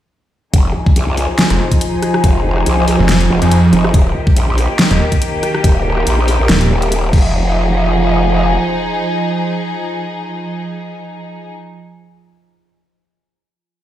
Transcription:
0.54 wobble bass F1, string section F3 D#4 G#4, ambient pad F4, kick, closed hi-hat
0.86 ambient pad C5 D#5, kick
0.96 wobble bass C2, closed hi-hat
1.17 open hi-hat
1.22 ambient pad G#5
1.39 snare, closed hi-hat
1.50 detuned saw bass F1, closed hi-hat
1.72 kick, closed hi-hat
1.81 closed hi-hat
2.03 cross-stick, closed hi-hat
2.14 cross-stick
2.24 wobble bass F1, kick, closed hi-hat
2.57 cross-stick
2.66 wobble bass C2, closed hi-hat
2.88 open hi-hat
2.99 detuned saw bass F1
3.09 snare, closed hi-hat
3.21 closed hi-hat
3.30 wobble bass F1
3.42 detuned saw bass F2, closed hi-hat
3.52 closed hi-hat
3.73 wobble bass G1, closed hi-hat
3.84 cross-stick
3.94 wobble bass D#1, string section D#3 A#3 G4, ambient pad G4, kick, closed hi-hat
4.27 kick
4.37 wobble bass A#1, ambient pad A#4 A#5, closed hi-hat
4.58 open hi-hat
4.79 snare, closed hi-hat
4.91 detuned saw bass D#1, closed hi-hat
5.12 kick, closed hi-hat
5.22 closed hi-hat
5.43 cross-stick, closed hi-hat
5.55 cross-stick
5.64 wobble bass D#1, kick, closed hi-hat
5.97 cross-stick
6.07 wobble bass A#1, closed hi-hat
6.28 open hi-hat
6.40 wobble bass A#1
6.49 detuned saw bass D#1, snare, closed hi-hat
6.61 closed hi-hat
6.71 wobble bass D#1
6.82 closed hi-hat
6.92 closed hi-hat
7.13 wobble bass F1, string section F3 D#4 G#4, ambient pad F4, kick, crash
7.20 ambient pad C5
7.48 ambient pad D#5
7.54 ambient pad G#5

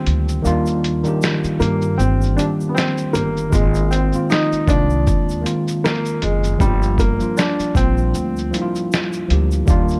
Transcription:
Already playing: tine electric piano D#3 G3 A#3 D4 F4 G4
0.07 upright bass D2, closed hi-hat, shaker
0.29 shaker
0.42 upright bass D#2, tine electric piano D#3 G3 A#3 D4, shaker
0.47 tine electric piano F4
0.66 shaker
0.84 closed hi-hat, shaker
1.04 tine electric piano D#3 G3 A#3 D4, shaker
1.08 tine electric piano G4
1.22 snare, shaker
1.44 muted upright bass stroke, shaker
1.59 upright bass G2, tine electric piano D#3 G3 A#3, felt piano A#3, closed hi-hat, shaker
1.62 tine electric piano D4 G4, shaker
1.82 shaker
1.98 upright bass G1, felt piano C4, shaker
2.21 shaker
2.24 shaker
2.36 tine electric piano D#3 G3 A#3 D4, felt piano D4, closed hi-hat, shaker
2.40 tine electric piano G4
2.60 shaker
2.69 felt piano B3
2.75 felt piano C4, snare, shaker
2.98 shaker
3.13 upright bass G1, tine electric piano D#3 G3 A#3 D4, felt piano A#3, closed hi-hat, shaker
3.17 tine electric piano G4
3.37 shaker
3.50 upright bass G#1, tine electric piano D#3 G#3 A#3 C4, felt piano G#3, kick, shaker
3.55 tine electric piano F4
3.74 shaker
3.91 felt piano C4, closed hi-hat, shaker
4.11 tine electric piano D#3 G#3 A#3 C4, shaker
4.16 tine electric piano F4
4.30 felt piano D#4, shaker
4.31 snare, shaker
4.52 muted upright bass stroke, shaker
4.66 upright bass C2, tine electric piano D#3 G#3 A#3, felt piano D4, kick, closed hi-hat, shaker
4.70 tine electric piano C4 F4, shaker
4.90 shaker
5.07 upright bass D#2, kick, shaker
5.29 shaker
5.31 shaker
5.41 tine electric piano D#3 G#3 A#3 C4
5.46 tine electric piano F4, closed hi-hat, shaker
5.68 shaker
5.84 felt piano A#3, snare, shaker
6.05 shaker
6.22 upright bass F#1, felt piano G#3, closed hi-hat, shaker
6.44 shaker
6.58 upright bass G1, tine electric piano F3 G3 A#3 D4, felt piano G3, kick, shaker
6.63 tine electric piano F4
6.82 shaker
6.98 felt piano A#3, kick, closed hi-hat, shaker
7.18 tine electric piano F3 G3 A#3 D4, shaker
7.23 tine electric piano F4
7.37 felt piano D4, snare, shaker
7.60 muted upright bass stroke, shaker
7.74 upright bass A#1, tine electric piano F3 G3 A#3, felt piano C4, kick, closed hi-hat, shaker
7.77 tine electric piano D4 F4, shaker
7.97 shaker
8.14 upright bass D2, shaker
8.36 shaker
8.38 shaker
8.51 tine electric piano F3 G3 A#3 D4, closed hi-hat, shaker
8.55 tine electric piano E4
8.62 tine electric piano F4
8.75 shaker
8.92 shaker
8.93 snare, shaker
9.13 shaker
9.28 upright bass D2, tine electric piano F3 G3 A#3 D4, closed hi-hat, shaker
9.33 tine electric piano G4
9.51 shaker
9.66 upright bass D#2, tine electric piano D#3 G3 A#3, kick, shaker
9.69 tine electric piano D4 F4, shaker
9.88 shaker
9.91 shaker

